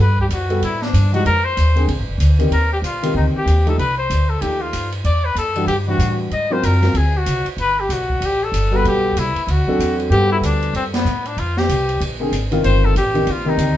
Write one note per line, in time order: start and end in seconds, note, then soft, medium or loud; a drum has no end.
0.00 0.28 G2 medium
0.00 0.18 B4 medium
0.18 0.26 G4 medium
0.18 kick soft
0.29 0.60 F#2 medium
0.29 0.61 F#4 medium
0.29 hi-hat pedal medium
0.29 ride medium
0.50 0.61 G3 medium
0.50 0.61 B3 soft
0.50 0.61 F#4 soft
0.50 0.61 A4 medium
0.50 ride soft
0.61 0.92 A2 medium
0.61 0.84 E4 medium
0.61 ride medium
0.82 1.13 D4 medium
0.82 snare soft
0.93 1.24 G2 medium
0.93 hi-hat pedal soft
0.93 ride medium
1.12 1.24 F3 medium
1.12 1.24 G#3 medium
1.12 1.24 D#4 medium
1.12 1.25 F#4 medium
1.12 1.24 G4 medium
1.12 ride soft
1.25 1.56 F2 medium
1.25 1.46 A#4 medium
1.25 ride soft
1.44 1.88 C5 medium
1.57 1.87 D#2 medium
1.57 hi-hat pedal soft
1.57 ride soft
1.75 1.87 D3 medium
1.75 1.87 A#3 soft
1.75 1.87 C4 soft
1.75 1.87 G#4 medium
1.75 ride soft
1.88 1.98 A#1 medium
1.88 ride soft
1.98 2.07 G#1 soft
2.08 2.17 F1 soft
2.18 2.50 D2 medium
2.18 hi-hat pedal medium
2.18 ride medium
2.39 2.50 D#3 medium
2.39 2.50 A#3 medium
2.39 2.50 C4 medium
2.39 2.51 G4 medium
2.39 ride soft
2.51 2.81 D#2 medium
2.51 2.70 A#4 medium
2.51 ride soft
2.73 2.78 G4 medium
2.82 3.13 A#1 medium
2.82 3.14 F4 medium
2.82 hi-hat pedal medium
2.82 ride medium
3.03 3.44 D#3 medium
3.03 3.44 A#3 medium
3.03 3.45 C4 medium
3.03 3.45 G4 medium
3.03 ride soft
3.14 3.33 D2 medium
3.14 3.25 D#4 medium
3.34 3.65 G4 medium
3.34 muted upright bass stroke soft
3.46 3.77 D#2 medium
3.46 hi-hat pedal soft
3.46 ride soft
3.66 3.77 F3 medium
3.66 3.77 A3 medium
3.66 3.78 D#4 medium
3.66 3.78 G4 medium
3.66 3.79 A4 medium
3.66 ride soft
3.78 4.09 C2 medium
3.78 3.97 B4 medium
3.78 ride soft
3.98 4.31 C5 medium
4.10 4.41 D2 medium
4.10 hi-hat pedal soft
4.10 ride medium
4.30 4.43 A4 medium
4.41 4.72 D#2 medium
4.41 4.88 F3 soft
4.41 4.89 A3 soft
4.41 4.89 D#4 soft
4.41 4.63 G4 medium
4.41 4.89 G4 soft
4.41 ride medium
4.61 4.93 F4 medium
4.73 5.04 G2 medium
4.73 hi-hat pedal soft
4.73 ride medium
4.92 ride soft
5.04 5.35 E2 medium
5.04 5.26 D5 medium
5.04 ride soft
5.25 5.37 B4 medium
5.35 5.66 F#2 medium
5.35 5.67 A4 medium
5.35 hi-hat pedal soft
5.35 ride medium
5.55 5.67 E3 medium
5.55 5.67 G3 medium
5.55 5.67 D4 medium
5.55 5.67 F#4 medium
5.55 ride soft
5.66 5.98 G2 medium
5.66 5.76 G4 medium
5.66 ride medium
5.86 6.28 E3 medium
5.86 6.29 G3 soft
5.86 6.29 D4 medium
5.86 6.29 F#4 medium
5.86 6.18 F#4 medium
5.98 6.30 A2 medium
5.98 hi-hat pedal medium
5.98 ride medium
6.31 6.62 G#2 medium
6.31 6.54 D#5 medium
6.31 ride soft
6.50 6.80 F#3 medium
6.50 6.80 C4 medium
6.50 6.81 F4 medium
6.50 6.81 A#4 medium
6.50 6.67 C5 medium
6.63 6.93 F#2 medium
6.63 6.99 A#4 medium
6.63 hi-hat pedal soft
6.63 ride medium
6.82 6.93 F#3 medium
6.82 6.94 C4 medium
6.82 6.94 F4 soft
6.82 6.94 A#4 medium
6.82 snare soft
6.82 ride soft
6.94 7.25 D2 medium
6.94 7.19 G#4 medium
6.94 ride medium
7.18 7.47 F#4 medium
7.26 7.44 C2 medium
7.26 hi-hat pedal medium
7.26 ride medium
7.45 muted upright bass stroke soft
7.45 ride soft
7.57 7.88 G1 medium
7.57 7.81 B4 medium
7.57 ride soft
7.80 7.94 G4 medium
7.89 8.20 B1 medium
7.89 8.27 F#4 medium
7.89 hi-hat pedal medium
7.89 ride medium
8.09 kick soft
8.20 8.51 A1 medium
8.20 ride medium
8.25 8.45 G4 medium
8.44 8.78 A4 medium
8.52 8.83 G1 medium
8.52 hi-hat pedal medium
8.52 ride medium
8.71 9.13 G3 medium
8.71 9.14 B3 medium
8.71 9.14 F#4 medium
8.71 9.14 A4 medium
8.76 8.86 B4 medium
8.85 9.15 B1 medium
8.85 9.20 G4 medium
8.85 ride soft
9.16 9.34 C2 medium
9.16 9.44 E4 medium
9.16 hi-hat pedal soft
9.16 ride medium
9.35 muted upright bass stroke soft
9.35 ride soft
9.44 9.65 D2 medium
9.44 9.52 E4 soft
9.48 10.00 F#4 medium
9.48 ride medium
9.67 10.09 F#3 medium
9.67 10.09 C4 medium
9.67 10.09 D4 medium
9.67 10.09 A4 medium
9.67 muted upright bass stroke soft
9.79 10.09 E2 medium
9.79 hi-hat pedal soft
9.79 ride medium
10.00 ride soft
10.10 10.40 G2 medium
10.10 10.99 G3 medium
10.10 10.99 B3 medium
10.10 10.99 F#4 medium
10.10 10.29 G4 loud
10.10 10.99 A4 medium
10.10 ride soft
10.32 10.37 E4 medium
10.41 10.72 D2 medium
10.41 10.73 D4 medium
10.41 hi-hat pedal medium
10.41 ride medium
10.63 ride soft
10.73 11.04 F#2 medium
10.73 10.84 C4 medium
10.73 ride soft
10.94 11.28 B3 medium
10.94 snare medium
10.94 ride medium
11.05 11.36 A2 medium
11.05 hi-hat pedal medium
11.25 11.41 D4 medium
11.25 ride soft
11.37 11.68 F2 medium
11.37 11.60 F4 medium
11.37 ride soft
11.57 12.01 G4 medium
11.57 snare medium
11.69 12.00 C2 medium
11.69 hi-hat pedal medium
11.69 ride medium
11.89 ride soft
12.00 12.31 A#1 medium
12.00 ride medium
12.20 12.31 D3 medium
12.20 12.31 A#3 medium
12.20 12.31 C4 medium
12.20 12.32 G#4 medium
12.32 12.63 G#1 medium
12.32 hi-hat pedal medium
12.32 ride medium
12.51 12.93 D#3 medium
12.51 12.93 A#3 medium
12.51 12.93 C4 medium
12.51 12.93 F4 medium
12.51 ride soft
12.64 12.94 G1 medium
12.64 12.87 C5 medium
12.64 ride medium
12.85 12.96 A4 medium
12.95 13.26 A1 medium
12.95 13.33 G4 medium
12.95 hi-hat pedal soft
12.95 ride medium
13.14 13.25 D#3 medium
13.14 13.25 A#3 medium
13.14 13.26 C4 medium
13.14 13.26 G4 medium
13.14 ride soft
13.27 13.57 A#1 medium
13.27 ride medium
13.31 13.51 F4 medium
13.45 13.77 D#3 medium
13.45 13.77 A#3 medium
13.45 13.77 C4 medium
13.45 13.77 G4 medium
13.49 13.77 D#4 medium
13.57 13.77 D2 medium
13.57 hi-hat pedal medium
13.57 ride medium